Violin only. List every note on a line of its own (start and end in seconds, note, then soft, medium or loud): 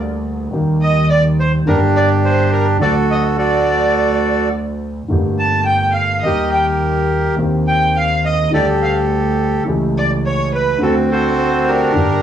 0.82 1.09 D#5 medium
1.10 1.23 D5 medium
1.40 1.53 C5 medium
1.67 1.80 A#4 medium
1.96 2.09 D5 medium
2.26 2.52 C5 medium
2.54 2.66 A#4 medium
2.83 2.95 D5 medium
3.12 3.25 D#5 medium
3.41 4.50 D5 medium
5.40 5.65 A5 medium
5.66 5.92 G5 medium
5.92 6.20 F5 medium
6.21 6.49 D#5 medium
6.51 6.64 G5 medium
7.68 7.94 G5 medium
7.97 8.23 F5 medium
8.26 8.52 D#5 medium
8.54 8.67 D5 medium
8.84 8.96 F5 medium
9.98 10.10 D5 medium
10.26 10.51 C#5 medium
10.54 10.80 B4 medium
10.83 10.95 A4 medium
11.11 11.64 C5 medium
11.67 12.22 A#4 medium